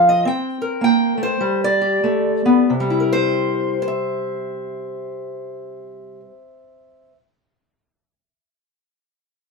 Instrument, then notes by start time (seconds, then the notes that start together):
steel-string acoustic guitar
Already playing: F3 C4 F4 A4
0.09 D#5
0.25 C4 G5
0.62 A#4
0.81 A#3 G5
1.17 A3
1.23 C5
1.40 G3
1.64 D5
1.81 G4
2.04 A3
2.46 B3
2.70 C3
2.80 G3
2.90 E4
3.00 A#4
3.13 C5
3.82 C5
3.88 E5